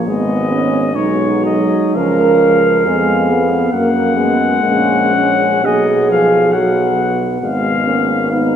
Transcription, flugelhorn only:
0.07 D#5
0.96 C#5
1.45 D#5
1.96 F5
3.72 F#5
5.65 D#5
6.11 F5
6.52 F#5
7.42 F5
8.31 F5

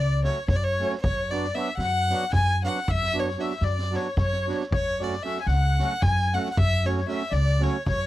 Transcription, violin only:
Already playing: D5
0.24 C#5
0.49 C#5
0.56 D5
0.64 C#5
1.01 C#5
1.31 D5
1.55 E5
1.78 F#5
2.34 G#5
2.65 F#5
2.91 E5
3.19 C#5
3.41 E5
3.64 D5
3.95 C#5
4.19 C#5
4.75 C#5
5.03 D5
5.23 E5
5.41 G#5
5.47 F#5
6.02 G#5
6.34 F#5
6.52 F#5
6.58 E5
6.86 C#5
7.09 E5
7.33 D5
7.63 C#5
7.88 C#5

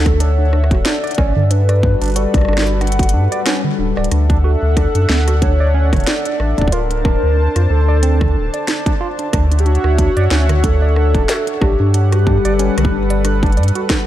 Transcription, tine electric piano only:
0.06 D4
0.20 D4
0.39 D4
0.53 D4
0.71 F#4
0.86 D4
1.04 D5
1.18 C#4
1.36 D3
1.51 D4
1.69 D5
1.83 D4
2.02 D4
2.16 F#4
2.34 D4
2.49 D4
2.67 D4
2.81 D4
2.99 F#4
3.14 D4
3.32 D5
3.46 C#4
3.65 D3
3.79 D4
3.97 D5
4.12 D4
4.30 D4
4.44 F#4
4.62 D4
4.77 D4
4.95 D4
5.09 D4
5.28 F#4
5.42 D4
5.60 D5
5.75 C#4
5.93 D3
6.07 D4
6.25 D5
6.40 D4
6.58 D4
6.72 F4
6.91 D4
7.05 D4
7.23 D4
7.38 D4
7.56 F4
7.70 D4
7.88 D5
8.03 C4
8.21 D3
8.35 D4
8.54 D5
8.68 D4
8.86 D4
9.01 F4
9.19 D4
9.33 D4
9.52 D4
9.66 D4
9.84 F#4
9.99 D4
10.17 D5
10.31 C#4
10.49 D3
10.64 D4
10.82 D5
10.96 D4
11.15 D4
11.29 F#4
11.47 D4
11.62 D4
11.80 D4
11.94 D4
12.12 F#4
12.27 D4
12.45 D5
12.59 C#4
12.78 D3
12.92 D4
13.10 D5
13.25 D4
13.43 D4
13.57 D5
13.76 F#4
13.90 A4

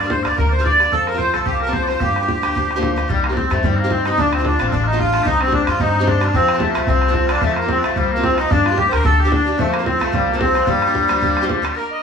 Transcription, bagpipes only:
0.07 C5 F5
0.23 D5 F5
0.38 A#4
0.49 C5 D5
0.61 F5
0.65 D5
0.92 A4
1.07 A#4
1.18 C5
1.33 A4
1.46 G4
1.60 A#4
1.69 C5 D5
1.83 C5 D5
2.00 G4
3.09 G3
3.24 A#3
3.33 C4 D4
3.51 A3
3.64 G3
3.76 A#3 C4
3.92 C4
4.06 D#4
4.19 D4
4.34 C4
4.46 D4
4.68 F4
4.72 D4
4.84 D#4 F4
4.99 F4
5.23 D#4 G4
5.41 C4
5.54 D4
5.65 F4 G4
5.81 D#4
6.08 D4
6.25 D4 F4
6.36 C4
6.58 D4
6.62 A3
6.71 A#3
6.80 A3
6.89 C4
7.11 C4 D4
7.27 D4 F4
7.38 F4
7.42 A3
7.53 A#3 C4
7.69 C4
7.79 D4
7.83 A3
7.94 G3 A3
8.12 A#3
8.24 C4
8.35 D#4 F4
8.51 D4
8.78 G4
8.92 A#4
9.01 C5
9.05 A4
9.20 G4
9.28 D4 A4
9.59 A3
9.73 A#3
9.86 C4
10.00 A3
10.13 G3
10.37 C4 D4
10.64 G3 D4
11.77 A#4

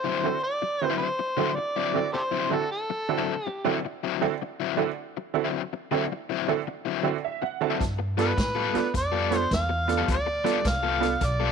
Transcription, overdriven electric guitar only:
0.04 D3 F#3 C4 E4
0.62 muted overdriven electric guitar stroke
0.90 D3 F#3 C4 E4
1.19 muted overdriven electric guitar stroke
1.37 D3 F#3 C4 E4
1.57 muted overdriven electric guitar stroke
1.76 D3 F#3 C4 E4
2.14 muted overdriven electric guitar stroke
2.31 D3 F#3 C4 E4
2.90 muted overdriven electric guitar stroke
3.18 D3 F#3 C4 E4
3.47 muted overdriven electric guitar stroke
3.65 D3 F#3 C4 E4
3.85 muted overdriven electric guitar stroke
4.03 D3 F#3 C4 E4
4.42 muted overdriven electric guitar stroke
4.60 D3 F#3 C4 E4
5.17 muted overdriven electric guitar stroke
5.45 D3 F#3 C4 E4
5.73 muted overdriven electric guitar stroke
5.91 D3 F#3 C4 E4
6.12 muted overdriven electric guitar stroke
6.30 D3 F#3 C4 E4
6.68 muted overdriven electric guitar stroke
6.85 D3 F#3 C4 E4
7.42 muted overdriven electric guitar stroke
7.70 D3 F#3 C4 E4
7.99 muted overdriven electric guitar stroke
8.17 G3 B3 F4 A4
8.37 muted overdriven electric guitar stroke
8.55 G3 B3 F4 A4
8.94 muted overdriven electric guitar stroke
9.12 G3 B3 F4 A4
9.69 muted overdriven electric guitar stroke
9.98 G3 B3 F4 A4
10.26 muted overdriven electric guitar stroke
10.44 G3 B3 F4 A4
10.65 muted overdriven electric guitar stroke
10.83 G3 B3 F4 A4
11.21 muted overdriven electric guitar stroke
11.40 G3 B3 F4 A4

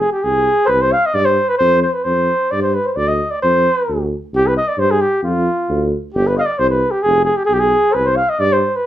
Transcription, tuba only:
0.24 C2
0.68 C2
1.14 G2
1.60 F2
2.05 F2
2.53 G2
2.96 D2
3.43 F2
3.89 D2
4.33 C2
4.78 G2
5.22 F2
5.70 D2
6.15 G1
6.59 C2
7.05 F1
7.49 B1
7.95 C2
8.39 G2

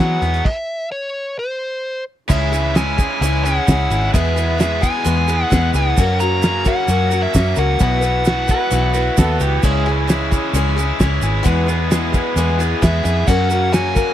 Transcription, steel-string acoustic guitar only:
0.00 E3 F#3 B3 E4 G#4
0.21 B3 E4 G#4
2.28 C#3 G#3 C#4 E4 G#4
2.52 C#4 E4 G#4
2.75 G#3 C#4 E4 G#4
2.98 C#4 E4 G#4
3.22 C#3 G#3 C#4 E4 G#4
3.46 C#4 E4 G#4
3.69 G#3 C#4 E4 G#4
3.90 C#4 E4 G#4
4.14 E3 G#3 B3 E4 G#4
4.36 B3 E4 G#4
4.58 G#3 B3 E4 G#4
4.81 B3 E4 G#4
5.04 E3 G#3 B3 E4 G#4
5.28 B3 E4 G#4
5.50 G#3 B3 E4 G#4
5.75 B3 E4 G#4
5.98 F#3 C#4 F#4 A#4
6.20 C#4 F#4 A#4
6.43 F#3 C#4 F#4 A#4
6.64 C#4 F#4 A#4
6.88 F#3 C#4 F#4 A#4
7.11 C#4 F#4 A#4
7.33 F#3 C#4 F#4 A#4
7.56 C#4 F#4 A#4
7.79 B2 E3 F#3 B3 E4 B4
8.01 F#3 B3 E4 B4
8.25 F#3 B3 E4 B4
8.47 F#3 B3 E4 B4
8.71 B2 E3 F#3 B3 E4 B4
8.95 F#3 B3 E4 B4
9.17 F#3 B3 E4 B4
9.40 F#3 B3 E4 B4
9.63 C#3 G#3 C#4 E4 G#4
9.87 C#4 E4 G#4
10.07 G#3 C#4 E4 G#4
10.31 C#4 E4 G#4
10.54 C#3 G#3 C#4 E4 G#4
10.77 C#4 E4 G#4
11.00 G#3 C#4 E4 G#4
11.23 C#4 E4 G#4
11.43 E3 G#3 B3 E4 G#4
11.67 B3 E4 G#4
11.90 G#3 B3 E4 G#4
12.12 B3 E4 G#4
12.37 E3 G#3 B3 E4 G#4
12.59 B3 E4 G#4
12.82 G#3 B3 E4 G#4
13.03 B3 E4 G#4
13.28 F#3 C#4 F#4 A#4
13.50 C#4 F#4 A#4
13.71 F#3 C#4 F#4 A#4
13.95 C#4 F#4 A#4

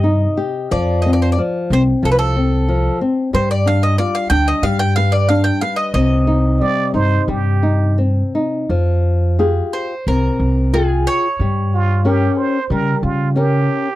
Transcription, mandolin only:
Already playing: D#5
0.72 D5
1.02 D#5
1.13 D5
1.22 C5
1.32 D5
1.73 C5
2.05 A4
2.12 B4
2.19 A4
3.35 C5
3.51 D5
3.67 F5
3.83 D#5
3.98 D5
4.15 F5
4.30 G5
4.48 D#5
4.63 F5
4.79 G5
4.96 F5
5.12 D5
5.29 F5
5.44 G5
5.61 F5
5.76 D#5
5.94 D#5
9.73 C5
10.08 A#4
10.74 G#4
11.07 C#5

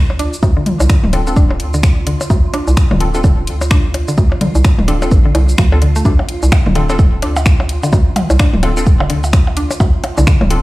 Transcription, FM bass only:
Already playing: D2
0.43 D2
0.80 C2
1.04 D1
1.60 D2
2.30 D2
2.68 C2
2.91 D1
3.47 D2
4.18 D2
4.55 C2
4.79 D1
5.11 A1
5.35 C2
5.58 D2
6.05 D2
6.43 C2
6.66 D1
7.22 D2
7.93 D2
8.30 C2
8.54 D1
9.10 D2
9.80 D2
10.18 C2
10.41 D1

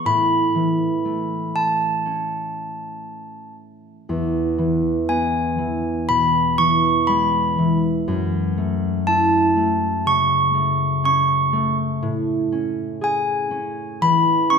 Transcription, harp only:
Already playing: B3 G#4
0.05 A2
0.55 E3
1.05 A3
2.06 C#4
4.09 E2
4.58 E3
5.09 B3
5.58 E3
6.09 B2
6.58 E3
7.08 G#3
7.58 E3
8.08 F#2
8.58 A3
9.07 E4
9.57 A3
10.05 C#3
10.54 A3
11.04 C#4
11.53 A3
12.02 A2
12.52 C#4
13.01 G#4
13.51 C#4
14.01 E3
14.51 C#4

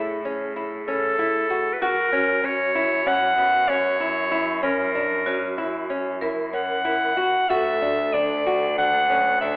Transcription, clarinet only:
Already playing: A4
0.87 A4
1.73 B4
1.81 A#4
2.45 C#5
3.08 F#5
3.69 C#5
4.64 A#4
6.53 F#5
7.49 E5
8.13 D5
8.78 F#5
9.41 E5

